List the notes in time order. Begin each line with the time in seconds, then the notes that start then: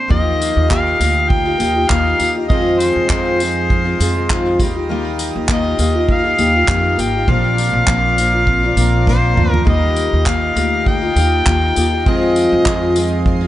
Already playing: F3 C4 D4
0.08 D#2 D#3 F3 A#3 D#4 F4 G4 D#5 F5 A#5, kick
0.42 F4, tambourine
0.57 D#2
0.68 D#3 A#3 D#4 F4 G4 F5, kick, clap
0.72 G4
0.99 D2 A#3 D#4 F4 G4, tambourine
1.29 A#3 G5, kick
1.45 D#4 F4 G4
1.58 D#2 A#3 D#4 F4 G4, tambourine
1.75 D#4 F4 G4
1.89 D#2 D#3 A#3 D#4 F4 G4 F5, kick, clap
2.18 D#2 A#3 D#4 F4 G4, tambourine
2.22 F4
2.36 D#4 F4 G4
2.48 F2 D#3 F3 G#3 C4 F4 G#4 D#5 C6, kick
2.80 D#4 C5, tambourine
2.96 F2
3.09 F2 D#3 F3 G#3 C4 F4 G#4, kick, clap
3.40 D#3 G#3 C4 D#4, tambourine
3.70 kick
3.85 D#3 G#3 C4 F4
3.99 F2 D#3 G#3 C4 F4 G#4, tambourine
4.16 D#3 G#3 C4 F4
4.29 F2 D#3 F3 G#3 C4 F4, kick, clap
4.58 D#2 G3 A#3 D#4 F4 G4 A#5, kick, tambourine
4.75 D#4 F4 G4
4.89 D#3 G3 A#3 D#4 F4 G4
5.19 F4, tambourine
5.36 D#2
5.49 D#3 A#3 D#4 F4 G4, kick, clap
5.53 D#5
5.79 D#2 A#3 D#4 F4 G4, tambourine
5.95 D#4 F4 G4
6.09 A#3 F5, kick
6.24 D#4 F4 G4
6.38 D#2 A#3 D#4 F4 G4, tambourine
6.55 D#4 F4 G4
6.67 F2 D#3 A#3 D#4 F4 G4, kick, clap
6.98 G#1 A#3 D#4 F4 G4 G5, tambourine
7.15 D#4 F4 G4
7.28 A#1 A#2 F3 A#3 C4 D4 F4 A#4 D5 F5 C6, kick
7.58 D4, tambourine
7.73 A#1
7.87 A#1 A#2 A#3 C4 D4 F4 A#4, kick, clap
8.17 A#3 C4 D4 F4, tambourine
8.34 C4 D4 F4
8.47 C4, kick
8.64 C4 D4 F4
8.76 A#1 A#3 C4 D4 F4 A#4, tambourine
9.07 A#2 A#3 C4 D4 F4 C5, kick, snare
9.35 D2 A#3 C4 D4 F4, mid tom
9.51 C4 D4 F4 A#4, floor tom
9.65 D#2 D#3 G3 A#3 D#4 F4 G4 D#5 A#5, kick
9.69 D#5
9.96 F4, tambourine
10.13 D#2
10.25 D#3 A#3 D#4 F4 G4 F5, kick, clap
10.55 D2 A#3 D#4 F4 G4, tambourine
10.86 A#3 G5, kick
11.02 D#4 F4 G4
11.15 D#2 A#3 D#4 F4 G4, tambourine
11.45 D#2 D#3 A#3 D#4 F4 G4, kick, clap
11.75 D#2 A#3 D#4 F4 G4, tambourine
11.93 D#4 F4 G4
12.05 F2 D#3 F3 G#3 C4 F4 G#4 D#5 C6, kick
12.36 D#4, tambourine
12.52 F2
12.66 F2 D#3 F3 G#3 C4 F4 G#4, kick, clap
12.96 D#3 G#3 C4 D#4 F4, tambourine
13.26 C4, kick
13.42 C4 F4